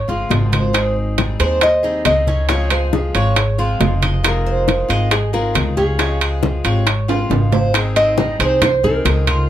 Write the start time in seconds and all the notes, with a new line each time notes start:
0.08 G1 F3 G#3 C4 F4, high bongo, high conga
0.29 G#1 F3 G#3 C4 F4, high bongo, low bongo, high conga, high timbale
0.53 C5, high bongo, high conga, high timbale
0.73 D#3 C4 D#4 G#4, high bongo, high timbale
0.96 high conga
1.18 G3 C4 D#4 G#4, high bongo, high conga, high timbale
1.39 D#2 G3 C4 D#4 G#4 C5, high conga, high timbale
1.61 D#5, muted steel-string acoustic guitar stroke, high bongo, high conga, high timbale
1.83 G3 C4 D#4 G#4, high bongo, high conga
2.05 C#2 C4 D#4 G#4 D#5, high bongo, low bongo, high conga, high timbale
2.27 C#4, high bongo, high conga
2.49 C#3 F3 G#3 C4 C#4 F4 C#5, high bongo, high conga, high timbale
2.70 G#4 C5, high conga, high timbale
2.93 F3 G#3 C4 F4 G#4, high bongo, high conga
3.15 G#1 F3 G#3 C4 F4 C#5, high conga, high timbale
3.36 muted steel-string acoustic guitar stroke, high bongo, high conga, high timbale
3.58 F3 G#3 C4 F4, high bongo, high conga
3.80 F1 F3 G#3 C4 F4, high bongo, low bongo, high conga, high timbale, low timbale
4.02 D#5, high bongo, high conga, high timbale
4.23 C3 D#3 G#3 C4 F4 A#4, high bongo, high conga, high timbale
4.46 C5, high conga
4.68 F4, high bongo, high conga, high timbale
4.88 G#1 D#3 G#3 C4 F4 D#5, high conga, high timbale
5.11 G#4, muted steel-string acoustic guitar stroke, high bongo, high conga, high timbale
5.33 D#3 G#3 C4 F4 G#4 A#4, high bongo, high conga
5.54 C#2 D#3 G#3 C4 F4, high bongo, low bongo, high conga, high timbale
5.77 C#4 G#4, high bongo, high conga
5.99 C#3 F3 G#3 C4 C#4 F4, high bongo, high conga, high timbale
6.21 G#4, high conga, high timbale
6.42 F3 G#3 C4 F4, high bongo, high conga
6.64 G#1 F3 G#3 C4 F4 C#5, high conga, high timbale
6.74 G4
6.87 muted steel-string acoustic guitar stroke, high bongo, high conga, high timbale
7.08 F3 G#3 C4 F4, high bongo, high conga, high timbale
7.30 G#1 F3 G#3 C4 F4, high bongo, low bongo, high conga, high timbale
7.52 C5, high bongo, high conga, low timbale
7.74 D#3 C4 D#4 G#4, high bongo, high conga, high timbale
7.96 C4 D#5, high bongo, high conga, high timbale
8.18 G3 C4 D#4 G#4, high bongo, high conga
8.39 C2 G3 C4 D#4 G#4 C5, high conga, high timbale
8.62 C5, muted steel-string acoustic guitar stroke, high bongo, high conga, low conga, high timbale
8.84 G3 C4 D#4 G#4 A#4, high bongo, high conga, low conga
9.05 C#2 C4 D#4 G#4, high bongo, low bongo, high conga, high timbale
9.27 F4, high bongo, high conga, high timbale